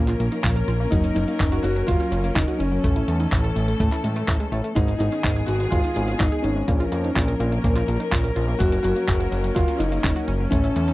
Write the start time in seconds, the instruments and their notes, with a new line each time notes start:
Already playing: analog synth bass A#1, string section F3 A#3 C#4 A#4, grand piano C#4
0.08 synth arpeggio sound F4, clap, closed hi-hat
0.20 analog synth bass A#1, synth arpeggio sound A#3, closed hi-hat
0.32 synth arpeggio sound D#4, closed hi-hat
0.44 analog synth bass A#1, synth arpeggio sound F4, kick, clap, closed hi-hat
0.56 synth arpeggio sound A#4, closed hi-hat
0.68 analog synth bass A#1, synth arpeggio sound F4, closed hi-hat
0.80 synth arpeggio sound A#3
0.91 analog synth bass F#1, synth arpeggio sound F#3, string section F#3, grand piano D#4, kick, closed hi-hat
1.04 synth arpeggio sound C#4, closed hi-hat
1.15 analog synth bass F#1, synth arpeggio sound F#3, grand piano D#4, closed hi-hat
1.28 synth arpeggio sound A#3, closed hi-hat
1.40 analog synth bass F#1, synth arpeggio sound C#4, kick, clap, closed hi-hat
1.52 synth arpeggio sound F#4, closed hi-hat
1.63 analog synth bass F#1, synth arpeggio sound F#3, grand piano F#4, closed hi-hat
1.76 synth arpeggio sound F#3, closed hi-hat
1.87 analog synth bass F#1, synth arpeggio sound F#3, grand piano F4, kick, closed hi-hat
2.00 synth arpeggio sound C#4, closed hi-hat
2.12 analog synth bass F#1, synth arpeggio sound F#3, closed hi-hat
2.24 synth arpeggio sound A#3, closed hi-hat
2.35 analog synth bass F#1, synth arpeggio sound C#4, grand piano D#4, kick, clap, closed hi-hat
2.48 synth arpeggio sound F#4, closed hi-hat
2.59 analog synth bass F#1, grand piano C#4, synth arpeggio sound C#4, closed hi-hat
2.72 synth arpeggio sound F#3
2.84 analog synth bass A1, string section E3 A3 A4, synth arpeggio sound A3, kick, closed hi-hat
2.96 synth arpeggio sound E4, closed hi-hat
3.08 analog synth bass E2, synth arpeggio sound A3, closed hi-hat
3.20 synth arpeggio sound D#4, closed hi-hat
3.32 analog synth bass A1, synth arpeggio sound E4, kick, clap, closed hi-hat
3.44 synth arpeggio sound A4, closed hi-hat
3.56 analog synth bass A1, synth arpeggio sound A3, closed hi-hat
3.68 synth arpeggio sound A3, closed hi-hat
3.80 analog synth bass A2, synth arpeggio sound A3, kick, closed hi-hat
3.92 synth arpeggio sound E4, clap, closed hi-hat
4.04 analog synth bass A2, synth arpeggio sound G#3, closed hi-hat
4.16 synth arpeggio sound A3, closed hi-hat
4.28 analog synth bass A1, synth arpeggio sound A3, kick, clap, closed hi-hat
4.40 synth arpeggio sound G#3, closed hi-hat
4.52 analog synth bass A1, synth arpeggio sound A3, closed hi-hat
4.64 synth arpeggio sound A3, closed hi-hat
4.75 analog synth bass G#1, string section D#3 G#3 B3 G#4, synth arpeggio sound G#3, grand piano D#4, kick, closed hi-hat
4.88 synth arpeggio sound D#4, closed hi-hat
4.99 analog synth bass G#1, synth arpeggio sound G#3, grand piano D#4, closed hi-hat
5.12 synth arpeggio sound C#4, closed hi-hat
5.24 analog synth bass G#1, synth arpeggio sound D#4, kick, clap, closed hi-hat
5.36 synth arpeggio sound G#4, closed hi-hat
5.46 analog synth bass G#1, synth arpeggio sound G#3, grand piano F#4, closed hi-hat
5.60 synth arpeggio sound G#3, closed hi-hat
5.71 analog synth bass G#1, synth arpeggio sound G#3, grand piano F4, kick, closed hi-hat
5.84 synth arpeggio sound D#4, closed hi-hat
5.96 analog synth bass G#1, synth arpeggio sound G#3, closed hi-hat
6.08 synth arpeggio sound C#4, closed hi-hat
6.18 analog synth bass G#1, grand piano D#4, synth arpeggio sound D#4, kick, clap, closed hi-hat
6.32 synth arpeggio sound G#4, closed hi-hat
6.43 analog synth bass G#1, grand piano C#4, synth arpeggio sound D#4, closed hi-hat
6.56 synth arpeggio sound G#3
6.68 analog synth bass A#1, string section F3 A#3 C#4 A#4, synth arpeggio sound A#3, kick, closed hi-hat
6.80 synth arpeggio sound F4, closed hi-hat
6.92 analog synth bass F2, synth arpeggio sound A#3, closed hi-hat
7.04 synth arpeggio sound D#4, closed hi-hat
7.16 analog synth bass A#1, synth arpeggio sound F4, kick, clap, closed hi-hat
7.28 synth arpeggio sound A#4, closed hi-hat
7.40 analog synth bass A#1, synth arpeggio sound A#3, closed hi-hat
7.52 synth arpeggio sound A#3, closed hi-hat
7.64 analog synth bass A#1, synth arpeggio sound A#3, kick, closed hi-hat
7.76 synth arpeggio sound F4, clap, closed hi-hat
7.88 analog synth bass A#1, synth arpeggio sound A#3, closed hi-hat
8.00 synth arpeggio sound D#4, closed hi-hat
8.12 analog synth bass A#1, synth arpeggio sound F4, kick, clap, closed hi-hat
8.24 synth arpeggio sound A#4, closed hi-hat
8.36 analog synth bass A#1, synth arpeggio sound F4, closed hi-hat
8.48 synth arpeggio sound A#3
8.59 analog synth bass F#1, string section F#3 A#3, synth arpeggio sound F#3, grand piano F#4, kick, closed hi-hat
8.72 synth arpeggio sound C#4, closed hi-hat
8.83 analog synth bass F#1, synth arpeggio sound F#3, grand piano F#4, closed hi-hat
8.96 synth arpeggio sound A#3, closed hi-hat
9.08 analog synth bass F#1, synth arpeggio sound C#4, kick, clap, closed hi-hat
9.20 synth arpeggio sound F#4, closed hi-hat
9.32 analog synth bass F#1, synth arpeggio sound F#3, closed hi-hat
9.44 synth arpeggio sound F#3, closed hi-hat
9.55 analog synth bass F#1, synth arpeggio sound F#3, grand piano F4, kick, closed hi-hat
9.68 synth arpeggio sound C#4, closed hi-hat
9.79 analog synth bass F#1, synth arpeggio sound F#3, grand piano D#4, closed hi-hat
9.92 synth arpeggio sound A#3, closed hi-hat
10.04 analog synth bass F#1, synth arpeggio sound C#4, kick, clap, closed hi-hat
10.16 synth arpeggio sound F#4, closed hi-hat
10.28 analog synth bass F#1, synth arpeggio sound C#4, closed hi-hat
10.40 synth arpeggio sound F#3
10.51 analog synth bass A1, string section E3 A3 A4, synth arpeggio sound A3, grand piano C#4, kick, closed hi-hat
10.64 synth arpeggio sound E4, closed hi-hat
10.76 analog synth bass E2, synth arpeggio sound A3, closed hi-hat
10.88 synth arpeggio sound D#4, closed hi-hat